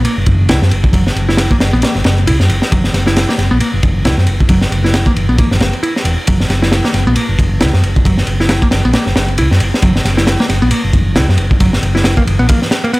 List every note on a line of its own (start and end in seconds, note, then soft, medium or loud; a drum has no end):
0.05 0.14 A#3 medium
0.05 muted fingered electric bass stroke soft
0.05 ride medium
0.17 0.24 F#1 medium
0.26 0.50 F#1 medium
0.26 kick medium
0.26 ride medium
0.49 0.57 C#2 medium
0.49 0.59 E4 medium
0.49 snare loud
0.49 ride medium
0.62 0.68 F#2 medium
0.62 snare medium
0.71 0.79 F#1 medium
0.71 ride medium
0.84 kick medium
0.93 1.08 F#1 medium
0.93 1.03 F#3 medium
0.93 kick loud
0.93 ride medium
1.07 snare soft
1.16 1.44 F#1 medium
1.16 ride medium
1.29 1.50 E4 medium
1.29 snare soft
1.37 snare loud
1.37 ride medium
1.51 1.55 A#3 loud
1.51 kick loud
1.60 1.68 F#1 medium
1.60 snare loud
1.60 ride medium
1.73 1.79 A#1 medium
1.73 1.82 B3 loud
1.82 1.93 A#3 medium
1.82 snare loud
1.82 ride medium
1.95 2.02 F#1 medium
1.95 snare soft
2.04 2.28 F#1 medium
2.04 snare loud
2.04 ride medium
2.18 ride soft
2.27 2.34 C#2 medium
2.27 2.37 E4 medium
2.27 ride medium
2.40 2.46 F#2 medium
2.40 snare soft
2.49 2.57 F#1 medium
2.49 ride medium
2.62 snare medium
2.72 2.87 F#1 loud
2.72 2.82 F#3 medium
2.72 kick loud
2.72 ride medium
2.84 snare soft
2.93 3.22 F#1 medium
2.93 snare soft
2.93 ride medium
3.07 3.28 E4 medium
3.07 snare medium
3.16 snare loud
3.16 ride medium
3.29 3.33 A#3 loud
3.29 snare medium
3.38 3.46 F#1 medium
3.38 snare soft
3.38 ride medium
3.51 3.58 A#1 medium
3.51 3.60 B3 loud
3.60 3.70 A#3 medium
3.60 muted fingered electric bass stroke soft
3.60 ride medium
3.73 3.80 F#1 medium
3.83 4.06 F#1 medium
3.83 kick medium
3.83 ride medium
4.05 4.12 C#2 medium
4.05 4.15 E4 medium
4.05 snare loud
4.05 ride medium
4.17 4.24 F#2 medium
4.17 snare soft
4.27 4.35 F#1 medium
4.27 ride medium
4.40 kick loud
4.49 4.64 F#1 loud
4.49 4.59 F#3 medium
4.49 kick loud
4.49 ride medium
4.61 snare medium
4.71 5.00 F#1 loud
4.71 ride medium
4.84 5.05 E4 medium
4.84 snare soft
4.94 snare loud
4.94 ride medium
5.06 5.11 A#3 loud
5.06 kick medium
5.16 5.24 F#1 medium
5.16 ride medium
5.29 5.35 A#1 medium
5.29 5.38 B3 loud
5.38 5.48 A#3 medium
5.38 kick loud
5.38 ride medium
5.51 5.57 F#1 medium
5.51 snare medium
5.60 5.68 F#1 medium
5.60 snare loud
5.60 ride medium
5.73 ride soft
5.83 5.92 E4 medium
5.83 ride medium
5.96 snare soft
6.05 6.12 E1 medium
6.05 ride medium
6.27 6.42 F#1 loud
6.27 6.37 F#3 medium
6.27 kick loud
6.27 ride medium
6.40 snare soft
6.49 6.78 F#1 loud
6.49 snare soft
6.49 ride medium
6.62 6.83 E4 medium
6.62 snare medium
6.72 snare loud
6.72 ride medium
6.84 6.89 A#3 loud
6.84 snare medium
6.94 7.01 F#1 medium
6.94 snare soft
6.94 ride medium
7.06 7.13 A#1 medium
7.06 7.16 B3 loud
7.16 7.26 A#3 medium
7.16 muted fingered electric bass stroke soft
7.16 ride medium
7.29 7.35 F#1 medium
7.39 7.62 F#1 medium
7.39 kick medium
7.39 ride medium
7.61 7.68 C#2 loud
7.61 7.70 E4 medium
7.61 snare loud
7.61 ride medium
7.73 7.80 F#2 medium
7.73 snare medium
7.83 7.90 F#1 medium
7.83 ride medium
7.96 kick loud
8.05 8.20 F#1 loud
8.05 8.15 F#3 medium
8.05 kick loud
8.05 ride medium
8.18 snare soft
8.27 8.55 F#1 medium
8.27 ride medium
8.40 8.61 E4 medium
8.40 snare soft
8.49 snare loud
8.49 ride medium
8.62 8.67 A#3 loud
8.62 kick loud
8.71 8.79 F#1 medium
8.71 snare loud
8.71 ride medium
8.85 8.91 A#1 medium
8.85 8.94 B3 loud
8.93 9.04 A#3 medium
8.93 snare loud
8.93 ride medium
9.06 9.13 F#1 medium
9.06 snare soft
9.16 9.39 F#1 medium
9.16 snare loud
9.16 ride medium
9.28 ride soft
9.38 9.46 C#2 medium
9.38 9.48 E4 medium
9.38 ride medium
9.51 9.58 F#2 medium
9.51 snare soft
9.60 9.68 F#1 medium
9.60 ride medium
9.74 snare medium
9.82 9.98 F#1 loud
9.82 9.93 F#3 medium
9.82 kick loud
9.82 ride medium
9.96 snare soft
10.05 10.33 F#1 loud
10.05 snare soft
10.05 ride medium
10.17 10.39 E4 medium
10.17 snare medium
10.27 snare loud
10.27 ride medium
10.40 10.44 A#3 loud
10.40 snare medium
10.49 10.57 F#1 medium
10.49 snare soft
10.49 ride medium
10.62 10.69 A#1 medium
10.62 10.71 B3 loud
10.71 10.81 A#3 medium
10.71 muted fingered electric bass stroke soft
10.71 ride medium
10.84 10.91 F#1 medium
10.93 11.17 F#1 medium
10.93 kick medium
10.93 ride medium
11.16 11.23 C#2 medium
11.16 11.26 E4 medium
11.16 snare loud
11.16 ride medium
11.28 11.35 F#2 medium
11.28 snare medium
11.38 11.46 F#1 medium
11.38 ride medium
11.51 kick medium
11.60 11.75 F#1 loud
11.60 11.70 F#3 medium
11.60 kick loud
11.60 ride medium
11.73 snare medium
11.83 12.11 F#1 medium
11.83 ride medium
11.95 12.16 E4 medium
11.95 snare soft
12.04 snare loud
12.04 ride medium
12.17 12.22 A#3 loud
12.17 kick medium
12.27 12.34 F#1 medium
12.27 ride medium
12.39 12.46 A#1 medium
12.39 12.48 B3 loud
12.49 12.59 A#3 medium
12.49 kick loud
12.49 ride medium
12.62 snare soft
12.71 snare loud
12.71 ride medium
12.84 12.93 A#3 medium
12.84 ride soft
12.93 13.00 B3 loud
12.93 ride medium